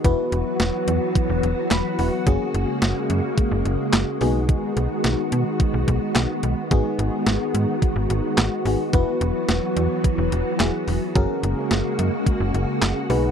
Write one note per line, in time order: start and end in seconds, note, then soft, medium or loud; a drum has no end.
0.00 4.17 F#4 medium
0.04 0.16 E1 loud
0.04 2.24 E3 medium
0.04 2.24 F#3 medium
0.04 2.24 B3 medium
0.04 1.95 B3 medium
0.04 1.95 E4 medium
0.04 1.95 F#4 medium
0.04 1.95 B4 medium
0.04 kick loud
0.04 closed hi-hat medium
0.32 0.43 E1 loud
0.32 closed hi-hat medium
0.60 0.71 E1 loud
0.60 snare loud
0.60 closed hi-hat medium
0.88 0.99 E2 loud
0.88 closed hi-hat medium
1.15 kick loud
1.15 closed hi-hat medium
1.30 1.41 E1 medium
1.43 1.55 E1 loud
1.43 closed hi-hat medium
1.71 1.82 E1 loud
1.71 1.97 B5 medium
1.71 snare loud
1.71 clap medium
1.71 closed hi-hat medium
1.99 2.10 E1 loud
1.99 2.27 B3 medium
1.99 2.27 E4 medium
1.99 2.25 F#4 medium
1.99 2.27 B4 medium
1.99 2.25 F#5 medium
1.99 open hi-hat medium
2.27 2.38 F#1 loud
2.27 4.19 C#3 medium
2.27 8.89 G#3 medium
2.27 4.19 A#3 medium
2.27 4.17 A#3 medium
2.27 4.17 C#4 medium
2.27 4.17 F#4 medium
2.27 4.17 G#4 medium
2.27 kick loud
2.27 closed hi-hat medium
2.54 2.66 F#1 loud
2.54 closed hi-hat medium
2.82 2.93 F#1 loud
2.82 snare loud
2.82 closed hi-hat medium
3.10 3.21 F#2 medium
3.10 closed hi-hat medium
3.38 kick loud
3.38 closed hi-hat medium
3.52 3.63 F#1 loud
3.65 3.77 F#1 loud
3.65 closed hi-hat medium
3.93 4.05 F#1 loud
3.93 snare loud
3.93 clap medium
3.93 closed hi-hat medium
4.21 4.55 B1 loud
4.21 6.69 D#3 medium
4.21 11.12 B3 medium
4.21 6.39 B3 medium
4.21 6.39 D#4 medium
4.21 6.39 F#4 medium
4.21 6.69 F#4 medium
4.21 6.39 G#4 medium
4.21 open hi-hat medium
4.49 kick loud
4.49 closed hi-hat medium
4.77 4.88 B1 loud
4.77 closed hi-hat medium
5.04 5.16 B1 loud
5.04 snare loud
5.04 closed hi-hat medium
5.32 5.44 B2 loud
5.32 closed hi-hat medium
5.60 kick loud
5.60 closed hi-hat medium
5.74 5.85 B1 medium
5.88 5.99 B1 loud
5.88 kick medium
5.88 closed hi-hat medium
6.15 6.27 B1 loud
6.15 snare loud
6.15 clap medium
6.15 closed hi-hat medium
6.43 6.55 B1 loud
6.43 closed hi-hat medium
6.71 6.82 G#1 loud
6.71 8.91 D#3 medium
6.71 8.62 B3 medium
6.71 8.62 D#4 medium
6.71 11.12 F#4 medium
6.71 8.62 F#4 medium
6.71 8.62 G#4 medium
6.71 kick loud
6.71 closed hi-hat medium
6.99 7.10 G#1 loud
6.99 closed hi-hat medium
7.27 7.38 G#1 loud
7.27 snare loud
7.27 closed hi-hat medium
7.54 7.66 G#2 loud
7.54 closed hi-hat medium
7.82 kick loud
7.82 closed hi-hat medium
7.96 8.07 G#1 medium
8.10 8.21 G#1 loud
8.10 closed hi-hat medium
8.38 8.49 G#1 loud
8.38 snare loud
8.38 clap medium
8.38 closed hi-hat medium
8.65 8.77 G#1 loud
8.65 8.92 B3 medium
8.65 8.93 D#4 medium
8.65 8.92 F#4 medium
8.65 8.93 G#4 medium
8.65 open hi-hat medium
8.93 9.05 E1 loud
8.93 11.13 E3 medium
8.93 11.13 F#3 medium
8.93 10.57 B3 medium
8.93 10.57 E4 medium
8.93 10.57 F#4 medium
8.93 10.57 B4 medium
8.93 kick loud
8.93 closed hi-hat medium
9.21 9.32 E1 loud
9.21 closed hi-hat medium
9.49 9.60 E1 loud
9.49 snare loud
9.49 closed hi-hat medium
9.77 9.88 E2 loud
9.77 closed hi-hat medium
10.04 kick loud
10.04 closed hi-hat medium
10.18 10.30 E1 medium
10.32 10.43 E1 loud
10.32 closed hi-hat medium
10.60 10.71 E1 loud
10.60 11.16 B3 medium
10.60 11.16 E4 medium
10.60 11.14 F#4 medium
10.60 11.14 G#4 medium
10.60 snare loud
10.60 clap medium
10.60 closed hi-hat medium
10.88 10.99 E1 loud
10.88 open hi-hat medium
11.15 11.27 F#1 loud
11.15 13.08 C#3 medium
11.15 13.08 G#3 medium
11.15 13.08 A#3 medium
11.15 13.06 C#4 medium
11.15 13.31 F#4 medium
11.15 13.06 F#4 medium
11.15 13.06 G#4 medium
11.15 13.06 A#4 medium
11.15 kick loud
11.15 closed hi-hat medium
11.43 11.55 F#1 loud
11.43 closed hi-hat medium
11.71 11.82 F#1 loud
11.71 snare loud
11.71 closed hi-hat medium
11.99 12.10 F#2 medium
11.99 closed hi-hat medium
12.26 kick loud
12.26 closed hi-hat medium
12.40 12.52 F#1 loud
12.54 12.66 F#1 loud
12.54 closed hi-hat medium
12.82 12.93 F#1 medium
12.82 snare loud
12.82 clap medium
12.82 closed hi-hat medium
13.10 13.31 B1 loud
13.10 13.31 D#3 medium
13.10 13.31 G#3 medium
13.10 13.31 B3 medium
13.10 13.31 D#4 medium
13.10 13.31 F#4 medium
13.10 13.31 G#4 medium
13.10 13.31 B4 medium
13.10 open hi-hat medium